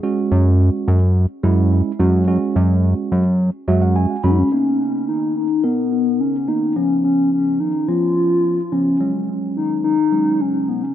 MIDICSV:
0, 0, Header, 1, 4, 480
1, 0, Start_track
1, 0, Tempo, 560748
1, 28, Time_signature, 4, 2, 24, 8
1, 9369, End_track
2, 0, Start_track
2, 0, Title_t, "Soft synth lead"
2, 0, Program_c, 0, 80
2, 3631, Note_on_c, 0, 61, 85
2, 3690, Note_on_c, 0, 63, 73
2, 3703, Note_off_c, 0, 61, 0
2, 3753, Note_on_c, 0, 61, 92
2, 3765, Note_off_c, 0, 63, 0
2, 4346, Note_off_c, 0, 61, 0
2, 4352, Note_on_c, 0, 63, 96
2, 4573, Note_off_c, 0, 63, 0
2, 4591, Note_on_c, 0, 63, 87
2, 4830, Note_on_c, 0, 59, 89
2, 4843, Note_off_c, 0, 63, 0
2, 5310, Note_on_c, 0, 61, 91
2, 5323, Note_off_c, 0, 59, 0
2, 5549, Note_on_c, 0, 63, 92
2, 5561, Note_off_c, 0, 61, 0
2, 5787, Note_on_c, 0, 61, 99
2, 5800, Note_off_c, 0, 63, 0
2, 6023, Note_off_c, 0, 61, 0
2, 6028, Note_on_c, 0, 61, 89
2, 6251, Note_off_c, 0, 61, 0
2, 6266, Note_on_c, 0, 61, 95
2, 6505, Note_on_c, 0, 63, 99
2, 6517, Note_off_c, 0, 61, 0
2, 6744, Note_on_c, 0, 65, 112
2, 6757, Note_off_c, 0, 63, 0
2, 7466, Note_on_c, 0, 61, 90
2, 7479, Note_off_c, 0, 65, 0
2, 7947, Note_off_c, 0, 61, 0
2, 8187, Note_on_c, 0, 63, 107
2, 8411, Note_off_c, 0, 63, 0
2, 8425, Note_on_c, 0, 63, 104
2, 8909, Note_on_c, 0, 61, 93
2, 8922, Note_off_c, 0, 63, 0
2, 9146, Note_on_c, 0, 59, 90
2, 9158, Note_off_c, 0, 61, 0
2, 9267, Note_on_c, 0, 61, 91
2, 9280, Note_off_c, 0, 59, 0
2, 9369, Note_off_c, 0, 61, 0
2, 9369, End_track
3, 0, Start_track
3, 0, Title_t, "Tine electric piano"
3, 0, Program_c, 1, 4
3, 26, Note_on_c, 1, 56, 85
3, 28, Note_on_c, 1, 61, 81
3, 30, Note_on_c, 1, 66, 97
3, 837, Note_off_c, 1, 56, 0
3, 838, Note_off_c, 1, 61, 0
3, 839, Note_off_c, 1, 66, 0
3, 1227, Note_on_c, 1, 56, 90
3, 1229, Note_on_c, 1, 61, 82
3, 1231, Note_on_c, 1, 64, 96
3, 1632, Note_off_c, 1, 56, 0
3, 1634, Note_off_c, 1, 61, 0
3, 1635, Note_off_c, 1, 64, 0
3, 1707, Note_on_c, 1, 56, 82
3, 1708, Note_on_c, 1, 61, 75
3, 1710, Note_on_c, 1, 66, 86
3, 1910, Note_off_c, 1, 56, 0
3, 1911, Note_off_c, 1, 61, 0
3, 1912, Note_off_c, 1, 66, 0
3, 1947, Note_on_c, 1, 56, 83
3, 1948, Note_on_c, 1, 61, 83
3, 1950, Note_on_c, 1, 66, 93
3, 2757, Note_off_c, 1, 56, 0
3, 2758, Note_off_c, 1, 61, 0
3, 2759, Note_off_c, 1, 66, 0
3, 3147, Note_on_c, 1, 56, 88
3, 3148, Note_on_c, 1, 76, 72
3, 3149, Note_on_c, 1, 61, 81
3, 3151, Note_on_c, 1, 66, 97
3, 3260, Note_off_c, 1, 76, 0
3, 3268, Note_on_c, 1, 78, 69
3, 3380, Note_off_c, 1, 78, 0
3, 3388, Note_on_c, 1, 80, 72
3, 3552, Note_off_c, 1, 56, 0
3, 3553, Note_off_c, 1, 61, 0
3, 3555, Note_off_c, 1, 66, 0
3, 3611, Note_off_c, 1, 80, 0
3, 3626, Note_on_c, 1, 56, 79
3, 3627, Note_on_c, 1, 61, 69
3, 3627, Note_on_c, 1, 83, 72
3, 3629, Note_on_c, 1, 66, 87
3, 3829, Note_off_c, 1, 56, 0
3, 3830, Note_off_c, 1, 61, 0
3, 3831, Note_off_c, 1, 66, 0
3, 3851, Note_off_c, 1, 83, 0
3, 3867, Note_on_c, 1, 58, 66
3, 3869, Note_on_c, 1, 59, 64
3, 3871, Note_on_c, 1, 63, 74
3, 4678, Note_off_c, 1, 58, 0
3, 4679, Note_off_c, 1, 59, 0
3, 4679, Note_off_c, 1, 63, 0
3, 4825, Note_on_c, 1, 70, 69
3, 4827, Note_on_c, 1, 59, 62
3, 4828, Note_on_c, 1, 63, 75
3, 5434, Note_off_c, 1, 70, 0
3, 5435, Note_off_c, 1, 59, 0
3, 5436, Note_off_c, 1, 63, 0
3, 5546, Note_on_c, 1, 58, 62
3, 5548, Note_on_c, 1, 59, 57
3, 5549, Note_on_c, 1, 63, 69
3, 5749, Note_off_c, 1, 58, 0
3, 5751, Note_off_c, 1, 59, 0
3, 5751, Note_off_c, 1, 63, 0
3, 5786, Note_on_c, 1, 53, 65
3, 5788, Note_on_c, 1, 59, 63
3, 5790, Note_on_c, 1, 61, 74
3, 6597, Note_off_c, 1, 53, 0
3, 6598, Note_off_c, 1, 59, 0
3, 6599, Note_off_c, 1, 61, 0
3, 6746, Note_on_c, 1, 53, 69
3, 6747, Note_on_c, 1, 59, 63
3, 6750, Note_on_c, 1, 61, 77
3, 7354, Note_off_c, 1, 53, 0
3, 7355, Note_off_c, 1, 59, 0
3, 7356, Note_off_c, 1, 61, 0
3, 7464, Note_on_c, 1, 53, 64
3, 7467, Note_on_c, 1, 59, 57
3, 7469, Note_on_c, 1, 61, 70
3, 7669, Note_off_c, 1, 53, 0
3, 7670, Note_off_c, 1, 59, 0
3, 7671, Note_off_c, 1, 61, 0
3, 7705, Note_on_c, 1, 54, 71
3, 7707, Note_on_c, 1, 56, 63
3, 7709, Note_on_c, 1, 61, 78
3, 8517, Note_off_c, 1, 54, 0
3, 8518, Note_off_c, 1, 56, 0
3, 8518, Note_off_c, 1, 61, 0
3, 8664, Note_on_c, 1, 54, 70
3, 8667, Note_on_c, 1, 56, 66
3, 8669, Note_on_c, 1, 61, 74
3, 9274, Note_off_c, 1, 54, 0
3, 9275, Note_off_c, 1, 56, 0
3, 9276, Note_off_c, 1, 61, 0
3, 9369, End_track
4, 0, Start_track
4, 0, Title_t, "Analog synth bass"
4, 0, Program_c, 2, 38
4, 270, Note_on_c, 2, 42, 97
4, 600, Note_off_c, 2, 42, 0
4, 751, Note_on_c, 2, 42, 99
4, 1080, Note_off_c, 2, 42, 0
4, 1228, Note_on_c, 2, 42, 96
4, 1559, Note_off_c, 2, 42, 0
4, 1708, Note_on_c, 2, 42, 102
4, 2039, Note_off_c, 2, 42, 0
4, 2189, Note_on_c, 2, 42, 98
4, 2519, Note_off_c, 2, 42, 0
4, 2669, Note_on_c, 2, 42, 101
4, 2999, Note_off_c, 2, 42, 0
4, 3148, Note_on_c, 2, 42, 100
4, 3479, Note_off_c, 2, 42, 0
4, 3628, Note_on_c, 2, 42, 98
4, 3794, Note_off_c, 2, 42, 0
4, 9369, End_track
0, 0, End_of_file